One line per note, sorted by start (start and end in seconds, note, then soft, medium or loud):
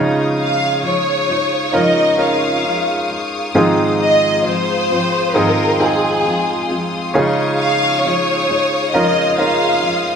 0.00 0.84 C#3 medium
0.00 1.25 C#3 soft
0.00 0.83 F3 medium
0.00 0.83 G#3 medium
0.00 1.65 C#4 medium
0.00 0.84 D#4 medium
0.00 1.65 D#4 medium
0.00 0.85 F4 medium
0.00 1.65 F4 medium
0.00 1.65 G#4 medium
0.00 7.11 G#4 soft
0.00 7.11 F5 soft
0.00 3.52 C#6 soft
0.00 7.11 D#6 medium
0.40 0.82 F5 medium
0.83 1.29 F3 soft
0.83 1.29 G#3 soft
0.83 1.28 D#4 soft
0.83 1.27 F4 soft
0.83 1.71 C#5 medium
1.29 1.74 G#3 soft
1.29 1.74 D#4 soft
1.29 1.74 F4 soft
1.73 2.64 C#3 medium
1.73 2.64 F3 medium
1.73 2.65 G#3 medium
1.73 2.16 C#4 soft
1.73 2.16 D#4 soft
1.73 2.65 D#4 medium
1.73 2.17 F4 soft
1.73 2.66 F4 medium
1.73 2.17 A#4 medium
1.73 2.19 D#5 medium
2.18 3.47 C#4 soft
2.18 3.47 D#4 soft
2.18 3.48 F4 soft
2.18 3.48 A#4 medium
2.18 3.10 F5 medium
2.64 3.09 F3 soft
2.64 3.10 G#3 soft
2.64 3.09 D#4 soft
2.64 3.07 F4 soft
3.09 3.54 G#3 soft
3.09 3.55 D#4 soft
3.09 3.54 F4 soft
3.54 4.45 G#2 medium
3.54 4.86 G#2 medium
3.54 4.48 D#3 medium
3.54 4.44 F3 medium
3.54 4.45 G#3 medium
3.54 5.26 C4 medium
3.54 4.45 C4 medium
3.54 5.26 D#4 medium
3.54 4.46 F4 medium
3.54 5.27 F4 medium
3.54 5.27 G#4 medium
3.54 7.11 C6 medium
4.02 4.43 D#5 medium
4.45 4.90 F3 soft
4.45 4.90 G#3 soft
4.45 4.90 C4 soft
4.45 4.89 F4 soft
4.45 5.36 C5 medium
4.90 5.35 F3 soft
4.90 5.35 G#3 soft
4.90 5.36 C4 soft
4.90 5.35 F4 soft
5.34 6.25 G#2 medium
5.34 6.28 D#3 medium
5.34 6.24 F3 medium
5.34 6.25 G#3 medium
5.34 5.77 C4 medium
5.34 6.25 C4 medium
5.34 5.78 D#4 medium
5.34 5.78 F4 soft
5.34 6.26 F4 medium
5.34 5.78 G#4 medium
5.34 5.81 A#4 medium
5.80 7.07 C4 soft
5.80 7.08 D#4 soft
5.80 7.08 F4 soft
5.80 7.08 G#4 medium
5.80 6.71 G#4 medium
6.25 6.70 F3 soft
6.25 6.70 G#3 soft
6.25 6.69 C4 soft
6.25 6.68 F4 soft
6.69 7.14 F3 soft
6.69 7.14 G#3 soft
6.69 7.15 C4 soft
6.69 7.14 F4 soft
7.14 8.04 C#3 medium
7.14 8.45 C#3 medium
7.14 8.04 F3 medium
7.14 8.04 G#3 medium
7.14 8.85 C#4 medium
7.14 8.85 D#4 medium
7.14 8.05 D#4 medium
7.14 8.85 F4 medium
7.14 8.06 F4 medium
7.14 10.16 G#4 medium
7.14 8.85 G#4 medium
7.14 10.16 F5 medium
7.14 8.92 C#6 medium
7.14 10.16 D#6 medium
7.60 8.01 F5 medium
8.04 8.49 F3 soft
8.04 8.49 G#3 medium
8.04 8.49 D#4 soft
8.04 8.47 F4 medium
8.04 8.94 C#5 medium
8.49 8.93 G#3 soft
8.49 8.94 D#4 soft
8.49 8.94 F4 soft
8.93 9.83 C#3 medium
8.93 9.82 F3 medium
8.93 9.83 G#3 medium
8.93 9.36 C#4 medium
8.93 9.36 D#4 soft
8.93 9.84 D#4 medium
8.93 9.36 F4 medium
8.93 9.84 F4 medium
8.93 9.37 A#4 medium
8.93 9.35 D#5 medium
8.93 10.16 C6 medium
9.38 10.16 C#4 soft
9.38 10.16 D#4 soft
9.38 10.16 F4 soft
9.38 10.16 A#4 medium
9.38 10.16 F5 medium
9.82 10.16 F3 soft
9.82 10.16 G#3 soft
9.82 10.16 D#4 soft
9.82 10.16 F4 medium